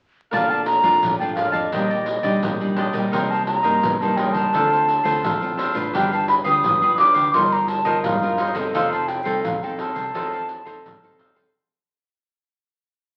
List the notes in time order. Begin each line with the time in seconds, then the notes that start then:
0.31 A#1 A#2 A3 D4 F4 A#4 D5 F5 A5, pandeiro, shaker, surdo
0.50 D5 F5 A5, pandeiro, shaker
0.66 A#5, muted cavaquinho stroke, pandeiro, shaker
0.83 F2 A3 D4 F4 D5 F5, pandeiro, shaker
1.03 A#1 F3, pandeiro, shaker, surdo
1.19 A3 D4 F4 D5 F5 G5 A5, pandeiro, shaker
1.35 A#4 D5 F5 A5, pandeiro, shaker, surdo
1.51 F2 D5 D#5 F5 A5, pandeiro, shaker
1.72 A#1 A#2 G3 D4 D#4 G4 D5 D#5, pandeiro, shaker, surdo
1.90 G4 D5 D#5, pandeiro, shaker
2.06 muted cavaquinho stroke, pandeiro
2.23 A#1 G3 D4 D#4 G4 D5 D#5, pandeiro, shaker
2.43 A#1 A#2 G4 D#5, pandeiro, shaker, surdo
2.60 G3 D4 D#4, pandeiro, shaker
2.76 D4 G4 D5 D#5, pandeiro
2.93 A#1 G3 A#3 D#4 G4 D5 D#5, pandeiro, shaker
3.12 C2 C3 D#4 A#4 C5 D#5 G5, pandeiro, shaker, surdo
3.31 A#4 C5 D#5 A5, pandeiro, shaker
3.47 A#5, muted cavaquinho stroke, pandeiro, shaker
3.63 G2 G3 A#3 D#4 A#4 C5 D#5, pandeiro, shaker
3.83 C2 G2, pandeiro, shaker, surdo
4.01 G3 A#3 D#4 A#4 C5 D#5 A5, pandeiro, shaker
4.17 D#4 A#4 C5 D#5 G5, pandeiro, surdo
4.33 C#2 A#4 C5 D#5 A5, pandeiro, shaker
4.53 D2 D3 C4 D4 F4 A4 C5 F5, pandeiro, shaker, surdo
4.71 A4 C5 F5, pandeiro, shaker
4.87 muted cavaquinho stroke, pandeiro, shaker
5.04 D2 C4 F4 A4 C5 F5, pandeiro, shaker
5.23 A1 A2 D4 A4 C5 F5, pandeiro, shaker, surdo
5.42 C4 F4 A4, pandeiro, shaker
5.57 D4 A4 C5 F5, pandeiro
5.74 A1 D4 F4 A4 B4 C5 F5, pandeiro, shaker
5.93 G1 G3 D4 G4 B4 F5 G5, pandeiro, shaker, surdo
6.12 G4 B4 F5 A5, pandeiro, shaker
6.28 B5, muted cavaquinho stroke, pandeiro, shaker
6.44 D2 D4 F4 G4 B4 F5 D#6, pandeiro, shaker
6.64 G1 D3, pandeiro, shaker, surdo
6.82 D4 F4 G4 B4 F5, pandeiro, shaker
6.97 D4 G4 B4 F5 D6, pandeiro
7.14 D2 G4 B4 F5, pandeiro, shaker
7.33 G1 G3 D#4 F4 A#4 C5 D#5 C6, pandeiro, shaker, surdo
7.52 A#4 C5 D#5 A#5, pandeiro, shaker
7.68 A5, muted cavaquinho stroke, pandeiro, shaker
7.85 G1 D#4 F4 A#4 C5 D#5, pandeiro, shaker
8.03 G2 G3 D#4 A#4 C5 D#5 F5, pandeiro, shaker, surdo
8.23 D#4 F4 A#4, pandeiro, shaker
8.38 D#4 A#4 C5 D#5, pandeiro, shaker
8.54 G1 C4 D#4 A4 A#4 C5 D#5, pandeiro, shaker
8.74 F1 F3 D#4 A4 C5 F5, pandeiro, shaker, surdo
8.92 A4 C5 F5 A5, pandeiro, shaker
9.08 G5, muted cavaquinho stroke, pandeiro, shaker
9.24 C2 C4 D#4 A4 C5 F5, pandeiro, shaker
9.44 F1 C3 F5, pandeiro, shaker, surdo
9.62 C4 D#4 A4 C5 F5 G5, pandeiro, shaker
9.78 D#4 A4 C5 F5 A5, pandeiro
9.95 C2 A4 C5 F5, pandeiro, shaker
10.14 F1 F3 C4 D#4 A4 C5 F5, pandeiro, shaker, surdo
10.33 A4 C5 F5, pandeiro, shaker
10.49 muted cavaquinho stroke, pandeiro, shaker
10.65 F1 C4 D#4 A4 C5 F5, pandeiro, shaker
10.85 G1 C3 D#4 A4 C5 F5, pandeiro, shaker, surdo
11.03 C4 D#4 A4, pandeiro, shaker
11.18 F1 D#4 A4 C5 F5, pandeiro, shaker
11.35 C4 D#4 A4 C5 F5, pandeiro, shaker